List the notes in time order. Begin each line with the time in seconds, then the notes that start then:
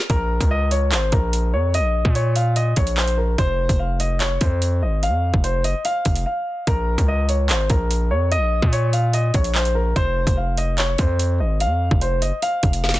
0.10 A#1 A#4, kick, closed hi-hat
0.41 C#2, kick, closed hi-hat
0.51 D#5
0.71 C#5, closed hi-hat
0.92 G#1 C5, clap, closed hi-hat
1.12 A#1 A#4, kick, closed hi-hat
1.33 closed hi-hat
1.53 F2 C#5
1.74 D#5, closed hi-hat
1.79 A#1
2.05 A#2, kick
2.15 C#5, closed hi-hat
2.36 F5, closed hi-hat
2.56 D#5, closed hi-hat
2.76 A#1 C#5, kick, closed hi-hat
2.87 closed hi-hat
2.97 C5, clap
3.08 closed hi-hat
3.17 A#4
3.38 F1 C5, kick, closed hi-hat
3.69 F1, kick, closed hi-hat
3.79 F5
4.00 D#5, closed hi-hat
4.20 C#5, clap, closed hi-hat
4.41 F2 C5, kick, closed hi-hat
4.62 closed hi-hat
4.82 G#1 D#5
5.03 F5, closed hi-hat
5.08 F2
5.34 F1, kick
5.44 C5, closed hi-hat
5.64 F#1 D#5, closed hi-hat
5.85 F5, closed hi-hat
6.05 F1, kick, closed hi-hat
6.16 closed hi-hat
6.26 F5
6.67 A#1 A#4, kick, closed hi-hat
6.98 C#2, kick, closed hi-hat
7.08 D#5
7.29 C#5, closed hi-hat
7.49 G#1 C5, clap, closed hi-hat
7.70 A#1 A#4, kick, closed hi-hat
7.91 closed hi-hat
8.11 F2 C#5
8.32 D#5, closed hi-hat
8.37 A#1
8.62 A#2, kick
8.73 C#5, closed hi-hat
8.93 F5, closed hi-hat
9.13 D#5, closed hi-hat
9.34 A#1 C#5, kick, closed hi-hat
9.44 closed hi-hat
9.55 C5, clap
9.65 closed hi-hat
9.75 A#4
9.96 F1 C5, kick, closed hi-hat
10.27 F1, kick, closed hi-hat
10.37 F5
10.57 D#5, closed hi-hat
10.78 C#5, clap, closed hi-hat
10.98 F2 C5, kick, closed hi-hat
11.19 closed hi-hat
11.40 G#1 D#5
11.60 F5, closed hi-hat
11.65 F2
11.91 F1, kick
12.01 C5, closed hi-hat
12.22 F#1 D#5, closed hi-hat
12.42 F5, closed hi-hat
12.63 F1, kick, closed hi-hat
12.73 closed hi-hat
12.84 F5, snare
12.89 snare
12.94 snare, closed hi-hat